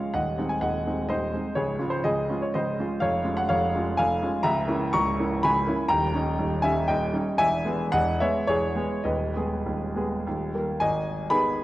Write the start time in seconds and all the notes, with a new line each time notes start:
Already playing: G#3 C#4 F4 C#5 F5
0.14 D#1 D#2 D#5 F#5
0.38 G#3 C4 D#4
0.49 G#5
0.61 D#1 D#2 D#5 F#5
0.87 G#3 C4 D#4
1.09 D#1 D#2 C5 D#5
1.33 G#3 C4 D#4
1.55 C#1 C#2 G#4 C#5
1.79 G#3 C#4 F4
1.90 C5
2.04 C#1 C#2 G#4 D#5
2.29 G#3 C#4 F4
2.42 C#5
2.54 C#1 C#2 C5 D#5
2.80 G#3 C#4 F4
3.00 F1 F2 C#5 F5
3.24 G#3 C#4 F4
3.37 F#5
3.49 F1 F2 C#5 F5
3.75 G#3 C#4 F4
3.97 F1 F2 F5 G#5
4.22 G#3 C#4 F4
4.43 C#1 C#2 E5 A#5
4.68 A#3 C#4 E4
4.93 C#1 C#2 A#5 C#6
5.19 A#3 C#4 E4
5.43 C#1 C#2 G#5 B5
5.67 A#3 C#4 E4
5.88 D#1 D#2 G5 A#5
6.14 G3 C#4 D#4
6.39 D#1 D#2
6.62 G3 C#4 D#4 E5 G#5
6.88 D#1 D#2 D#5 G5
7.13 G3 C#4 D#4
7.38 E1 E2 E5 G#5
7.65 G#3 B3 G#4
7.92 E1 E2 D#5 F#5
8.20 G#3 B3 G#4 C#5 E5
8.47 E1 E2 G#4 C#5
8.76 G#3 B3 G#4
9.04 D#1 D#2 B4 D#5
9.36 G#3 B3 G#4
9.66 D#1 D#2
9.96 G#3 B3 G#4
10.27 D#1 D#2
10.55 G3 A#3 A#4
10.80 G#1 D#5 G#5
11.30 D#3 B3 G#4 G#5 B5